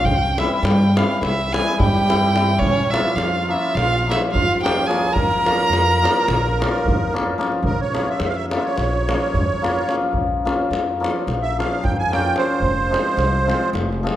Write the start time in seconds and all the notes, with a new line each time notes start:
Already playing: F3 G#3
0.04 C2 G5, davul low
0.38 E3 G3 C4 E4 E5, davul high
0.63 G2 G5, davul high
0.82 davul high
0.96 E3 G3 C4 E4 F5, davul high
1.22 C2 E5, davul high
1.39 davul high
1.53 E3 G3 C4 E4 G#4 G#5, davul high
1.68 davul high
1.79 G2 G4 G5, davul low
1.95 davul high
2.09 E3 G3 C4 E4, davul high
2.34 E3 G3 C4 E4, davul high
2.59 A#1 C#4 C#5, davul low
2.90 F3 A#3 C#4 E4 F4 E5, davul high
3.16 F2 F4 F5, davul high
3.34 davul high
3.48 F3 A#3 C#4 E4 F4 E5
3.75 A#1 F4 F5, davul high
3.94 davul high
4.07 F3 A#3 C#4 E4 F4
4.11 E5, davul high
4.24 davul high
4.31 F2 F4 F5
4.36 davul low
4.51 davul high
4.61 F3 A#3 G4 G5
4.65 C#4 F4, davul high
4.86 F3 A#3 C#4 F4 G#4 G#5
4.91 davul high
5.11 A#1 A#4 A#5
5.16 davul low
5.31 davul high
5.46 F3 A#3 C#4 F4, davul high
5.61 davul high
5.70 F2, davul high
5.89 davul high
6.02 F3 A#3 C#4 F4, davul high
6.17 davul high
6.28 A#1, davul high, davul low
6.46 davul high
6.60 F3 A#3 C#4 F4, davul high
6.75 davul high
6.85 F2, davul low
7.13 F3 A#3 C#4 F4, davul high
7.38 F3 A#3 C#4 F4, davul high
7.52 davul high
7.62 A#1 A#4, davul low
7.81 C#5
7.94 F3 A#3 C#4 F4, davul high
8.09 E5
8.20 F2 F5, davul high
8.24 E5 F5
8.36 E5
8.51 F3 A#3 C#4 F4, davul high
8.57 E5
8.64 C#5, davul high
8.78 A#1, davul high
8.93 davul high
9.09 F3 A#3 C#4 F4, davul high
9.22 davul high
9.34 F2, davul low
9.62 F3 A#3 C#4 F4, davul high
9.89 F3 A#3 C#4 F4, davul high
10.02 davul high
10.13 A#1, davul low
10.45 F3 A#3 C#4 F4, davul high
10.71 F2, davul high
11.00 F3 A#3 C#4 F4
11.04 davul high
11.16 davul high
11.27 A#1, davul high
11.43 E5, davul high
11.58 F3 A#3 C#4 F4 F5, davul high
11.73 davul high
11.83 F2 G5, davul low
11.99 G#5
12.11 F3 A#3 C#4 F4 G5, davul high
12.36 F3 A#3 C#4 F4 C5, davul high
12.50 davul high
12.60 F1, davul low
12.91 F3 G#3 C4 F4, davul high
13.17 C2, davul high
13.47 F3 G#3 C4 F4, davul high
13.63 davul high
13.73 F1, davul high
13.92 davul high
14.03 F3 G#3 C4 F4, davul high